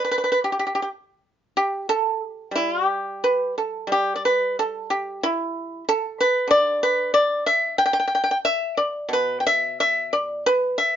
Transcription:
Already playing: G3
0.04 B4
0.11 B4
0.18 B4
0.24 B4
0.32 B4
0.44 G4
0.52 G4
0.59 G4
0.67 G4
0.75 G4
0.82 G4
1.57 G4
1.89 A4
2.29 G4
2.51 G3
2.56 E4
2.85 G4
3.24 B4
3.58 A4
3.87 G3
3.92 G4
4.16 D5
4.25 B4
4.59 A4
4.90 G4
5.23 E4
5.89 A4
6.21 B4
6.47 D3 D5
6.83 B4
7.14 D5
7.46 E5
7.78 G5
7.86 G5
7.93 G5
8.00 G5
8.07 G5
8.15 G5
8.24 G5
8.31 G5
8.45 E5
8.77 D5
9.09 B2
9.13 B4
9.40 G5
9.47 E5
9.80 E5
10.13 D5
10.46 B4
10.78 E5

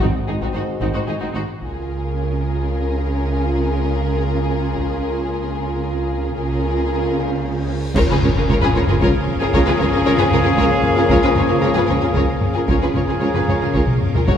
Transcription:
0.00 G#1 G#2 D#3 G#3 C4 D#4 F#4, taiko
0.28 G#1 G#2 D#4 G#4
0.41 G#2 C4 D#4 F#4, taiko
0.54 G#1 G#2 D#4 F#4 C5
0.80 G#1 G#2 C4 D#4 F#4, taiko
0.94 G#2 D#4 F#4 C5
1.07 G#1 G#2 D#4 G#4
1.21 G#2 C4 D#4 F#4
1.33 G#1 G#2 D#4 F#4 C5
1.58 C#2 C#3 A#3 F4 A#4, taiko
1.64 G#4
4.75 taiko
6.34 C#2 C#3 A#3 F4 G#4 A#4, reverse cymbal
7.94 C#2 C#3 F3 A#3 C#4 F4 G#4 A#4 C#5 F5, concert bass drum, taiko, crash, sub drop
8.09 C#3 F4 G#4 B4
8.22 C#2 C#3 F4 A#4 C#5, taiko low-mid
8.37 C#3 F4 G#4 A#4
8.49 C#2 C#3 F4 A#4 C#5
8.61 C#3 F4 G#4 B4, taiko low-mid
8.74 C#2 C#3 F4 A#4 C#5, taiko low-mid
8.88 C#3 F4 G#4 A#4, taiko low-mid
9.01 C#2 C#3 F4 A#4 C#5, taiko
9.27 taiko low-mid
9.41 C#3 F4 G#4 A#4
9.53 C#2 C#3 F4 A#4 C#5, taiko
9.66 C#3 F4 G#4 B4
9.79 C#2 C#3 F4 A#4 C#5, taiko low-mid
9.92 C#3 F4 G#4 A#4
10.05 C#2 C#3 F4 A#4 C#5
10.17 C#3 F4 G#4 B4, taiko low-mid
10.31 C#2 C#3 F4 A#4 C#5, taiko low-mid
10.43 C#3 F4 G#4 A#4, taiko low-mid
10.57 C#2 C#3 F4 A#4 C#5, taiko
10.83 taiko low-mid
10.96 C#3 F4 G#4 A#4
11.09 C#2 C#3 F4 A#4 C#5, taiko
11.24 C#3 F4 G#4 B4
11.36 C#2 C#3 F4 A#4 C#5, taiko low-mid
11.48 C#3 F4 G#4 A#4
11.61 C#2 C#3 F4 A#4 C#5
11.74 C#3 F4 G#4 B4, taiko low-mid
11.87 C#2 C#3 F4 A#4 C#5, taiko low-mid
12.01 C#3 F4 G#4 A#4, taiko low-mid
12.14 C#2 C#3 F4 A#4 C#5, taiko
12.41 taiko low-mid
12.54 C#3 F4 G#4 A#4
12.65 C#2 C#3 F3 A#3 C#4 F4 G#4 A#4 F5, taiko
12.70 C#5
12.81 C#3 F4 G#4 B4
12.94 C#2 C#3 F4 A#4 C#5, taiko low-mid
13.08 C#3 F4 G#4 A#4
13.20 C#2 C#3 F4 A#4 C#5
13.34 C#3 F4 G#4 B4, taiko low-mid
13.46 C#2 C#3 F4 A#4 C#5, taiko low-mid
13.61 C#3 F4 G#4 A#4, taiko low-mid
13.73 C#2 C#3 F4 A#4 C#5, taiko
13.88 taiko mid
14.01 taiko low-mid
14.13 C#3 F4 G#4 A#4, taiko low
14.26 F#1 F#2 F#4 A#4 C#5 F#5, taiko

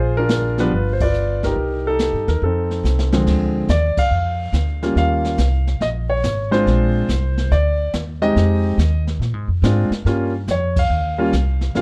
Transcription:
Already playing: A#1 F4 G#4 C5
0.17 D4 F4 A#4
0.29 snare, hi-hat pedal
0.58 F3 G3 B3 D4 F4 B4, snare
0.71 G1, brush sweep
0.93 C5
1.00 F4 B4 D5, kick, ride
1.14 hi-hat pedal
1.43 D#4 G4 A#4, kick, snare
1.56 C2, brush sweep
1.87 D#4 A4
1.99 snare, hi-hat pedal
2.13 G2
2.28 D#2 A#4, snare
2.42 F2 C4 D#4 A4, brush sweep
2.71 snare
2.84 C2, snare, hi-hat pedal
2.99 snare
3.13 D3 F3 G#3 C4, snare
3.27 D2, brush sweep, kick, snare, crash
3.68 D#2 D5, snare, hi-hat pedal
3.97 F5, muted upright bass stroke, kick, ride
4.11 F2, brush sweep
4.53 D2, snare, hi-hat pedal
4.82 G3 A#3 C#4 F4, snare
4.95 D#2 F5, brush sweep, snare
5.25 snare
5.38 C2, snare, hi-hat pedal
5.67 snare
5.80 A#1 D#5, brush sweep, snare
6.10 C#5
6.23 G#1, snare, hi-hat pedal
6.51 G#3 C4 D4 F4 C5, snare
6.66 A#1, brush sweep, snare
7.09 C2, snare, hi-hat pedal
7.37 snare
7.51 D2 D5, brush sweep, snare
7.93 D#2, snare, hi-hat pedal
8.22 G#3 C4 D#4 G4 D#5, snare
8.36 F2, brush sweep, snare
8.78 D#2, snare, hi-hat pedal
9.07 snare
9.19 A#2, brush sweep, snare
9.34 G#2
9.48 F2
9.62 G#2 G#3 C4 D4 F4, snare, hi-hat pedal
9.90 muted upright bass stroke, snare
10.05 G2 G3 A#3 C#4 F4, brush sweep, snare
10.48 F2 C#5, snare, hi-hat pedal
10.76 F5, kick, ride
10.90 D#2, brush sweep
11.18 G3 A#3 C#4 F4
11.33 C2, snare, hi-hat pedal
11.61 snare
11.75 A#1 G3 A#3 C#4 F4 F5, brush sweep, snare

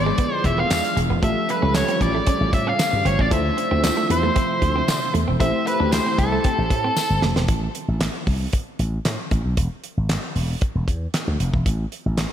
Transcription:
Already playing: G#1 D3 F3 G#3 B3 E4 F4 G#4 D5
0.06 G#3
0.18 B3, kick, closed hi-hat
0.35 C5
0.44 E1 E5, muted clean electric guitar stroke, kick, closed hi-hat
0.58 B3 F5
0.70 E2, muted clean electric guitar stroke, snare, clap, closed hi-hat, tambourine
0.85 closed hi-hat
0.96 E1 G#3, closed hi-hat
1.10 E1 B3
1.22 A1 C#3 G3 A3 F4 G4 A4 E5, kick, closed hi-hat
1.49 B4, muted clean electric guitar stroke, closed hi-hat
1.62 C#2 C#4
1.74 C#5, snare, clap, closed hi-hat, tambourine
1.88 C4, closed hi-hat
2.01 A1 D5, muted clean electric guitar stroke, kick, closed hi-hat
2.15 A3
2.27 C#4, kick, closed hi-hat
2.41 A1
2.53 A2 E5, muted clean electric guitar stroke, kick, closed hi-hat
2.67 C#4 F5
2.79 muted clean electric guitar stroke, snare, clap, closed hi-hat, tambourine
2.93 G2
3.05 G1 C4 C#5, closed hi-hat
3.19 A1 C#4 D5, kick
3.30 D2 C3 F3 A3 D4 E4 F4 C5 E5, kick, closed hi-hat
3.57 muted clean electric guitar stroke, closed hi-hat
3.71 D2 C4
3.84 snare, clap, closed hi-hat, tambourine
3.97 A3
4.10 E2 C5, muted clean electric guitar stroke, closed hi-hat
4.23 A3
4.36 C4, kick, closed hi-hat
4.62 D2, muted clean electric guitar stroke, kick, closed hi-hat
4.76 C4
4.88 D3, muted clean electric guitar stroke, snare, clap, closed hi-hat, tambourine
5.14 E2 A3, closed hi-hat
5.28 E1 C4
5.39 A1 A3 C4 E4 G4 C5 E5, kick, closed hi-hat
5.66 B4, muted clean electric guitar stroke, closed hi-hat
5.80 D2 D4
5.92 C5, snare, clap, closed hi-hat, tambourine
6.06 C4
6.18 C2 A4, muted clean electric guitar stroke, kick, closed hi-hat
6.32 A3
6.44 C4, kick, closed hi-hat
6.58 A1
6.70 A2, muted clean electric guitar stroke, kick, closed hi-hat
6.84 C4
6.96 muted clean electric guitar stroke, snare, tambourine
7.10 G1
7.22 F1 A3, snare
7.36 E1 C4, snare
7.48 A1, kick, closed hi-hat
7.75 closed hi-hat
7.88 A1
8.01 snare, clap, closed hi-hat
8.27 C2, kick, open hi-hat
8.53 kick, closed hi-hat
8.79 A1, closed hi-hat
9.05 A2, snare, clap, closed hi-hat
9.31 A1, kick, closed hi-hat
9.45 B1
9.57 E1, kick, closed hi-hat
9.84 closed hi-hat
9.97 G#1
10.09 snare, clap, closed hi-hat
10.35 E1, open hi-hat
10.61 kick, closed hi-hat
10.75 E1
10.88 E2, kick, closed hi-hat
11.14 snare, clap, closed hi-hat
11.28 D2
11.40 F1, closed hi-hat
11.54 E1, kick
11.66 A1, kick, closed hi-hat
11.92 closed hi-hat
12.06 A1
12.17 snare, clap, closed hi-hat

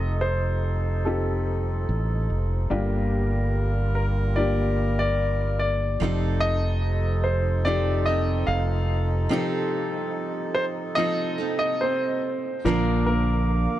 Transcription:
Already playing: F1 C3 F3 C4 D#4 F4 A4 D#5
0.21 C5
1.05 C4 D#4 F4 G4 A4
1.89 A1
2.30 F1
2.70 G1 G2 D3 G3 A#3 D4 F4 G4 A#4
3.95 A#4
4.36 A#3 D4 F4 G4 D5
4.99 D5
5.59 D5
6.00 F1 C3 F3 C4 D#4 F4 A4
6.40 D#5
7.24 C5
7.65 F3 C4 D#4 F4 G4 A4 D5
8.06 C4 D#4 A4 D#5
8.47 F1 F5
9.29 C3 F3 C4 D#4 F4 G4 A4
9.38 A4
10.54 C5
10.95 F3 C4 D#4 F4 A4 D#5
11.38 C4 D#4 A4
11.59 D#5
11.81 C4 C5
12.65 A#1 A#2 D3 F3 A#3 D4 F4 A#4 F5 D6
12.69 A#4
13.06 A#3 A#4

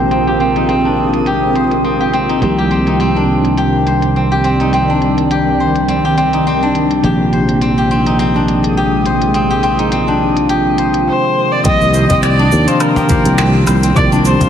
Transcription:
Already playing: A#1 C3 D#3 F3 G#3 A#3 C4 D4 F4 G4 A#4 C5 D#6
0.11 C4, closed hi-hat
0.27 G4
0.40 C4, closed hi-hat
0.56 D#4, closed hi-hat
0.69 C4, closed hi-hat
0.85 D4
1.14 closed hi-hat
1.26 G4, closed hi-hat
1.55 C5, closed hi-hat
1.71 closed hi-hat
1.84 C4
2.01 G4
2.13 C4, closed hi-hat
2.29 D#4, closed hi-hat
2.40 C2 C3 D#3 F3 G3 A#3 C4, closed hi-hat
2.44 G4
2.58 G4
2.71 C4, closed hi-hat
2.87 D#4, closed hi-hat
3.00 C4, closed hi-hat
3.13 D4 D5
3.21 D#3
3.45 closed hi-hat
3.58 G4, closed hi-hat
3.87 C5, closed hi-hat
4.02 closed hi-hat
4.16 C4
4.32 G4
4.44 C4, closed hi-hat
4.60 D#4, closed hi-hat
4.73 C4, closed hi-hat
4.90 D4
5.02 closed hi-hat
5.18 closed hi-hat
5.31 G4, closed hi-hat
5.60 C5
5.76 closed hi-hat
5.89 C4, closed hi-hat
6.05 G4
6.17 C4, closed hi-hat
6.33 D#4, closed hi-hat
6.47 C4
6.63 D4
6.75 closed hi-hat
6.91 closed hi-hat
7.02 A#1 C3 D#3 F3 G#3 A#3 G4, closed hi-hat
7.06 G4
7.27 D#6
7.33 C5, closed hi-hat
7.49 closed hi-hat
7.61 C4, closed hi-hat
7.69 F4
7.78 G4
7.91 C4
8.06 D#4, closed hi-hat
8.19 C4, closed hi-hat
8.36 D4
8.48 closed hi-hat
8.64 closed hi-hat
8.77 G4
9.06 C5, closed hi-hat
9.22 closed hi-hat
9.34 C4, closed hi-hat
9.50 G4
9.63 C4, closed hi-hat
9.79 D#4, closed hi-hat
9.92 C4, closed hi-hat
10.08 D4
10.37 closed hi-hat
10.49 G4, closed hi-hat
10.78 C5, closed hi-hat
10.94 closed hi-hat
11.08 C5
11.52 D5
11.64 C2 C3 D#3 F3 G3 A#3 C4 D#5, kick, closed hi-hat, shaker
11.68 G4
11.81 C2, shaker
11.94 D#3 A#4 C5, closed hi-hat, shaker
12.09 C2 C4 D#5, kick, cajon bass, closed hi-hat, shaker
12.22 D5, finger snap, closed hi-hat, shaker
12.39 D4
12.52 D#2, shaker
12.67 F4 C5, closed hi-hat, shaker
12.80 A#4, closed hi-hat, low woodblock, shaker
12.96 G4, cajon slap
13.08 C3 D#3 F3 A#3 G4 C5, kick, cajon bass, cajon slap, closed hi-hat, shaker
13.26 C2, closed hi-hat, shaker
13.38 C4, finger snap, cajon slap, shaker
13.66 C2 C5, cajon slap, closed hi-hat, low woodblock, shaker
13.83 C4, closed hi-hat, shaker
13.94 C2 C3 D#3 F3 A#3 D5, kick, closed hi-hat, shaker
13.98 G4
14.12 C2 D4, shaker
14.25 C5, closed hi-hat, shaker
14.41 C2 F4, cajon bass, closed hi-hat, shaker

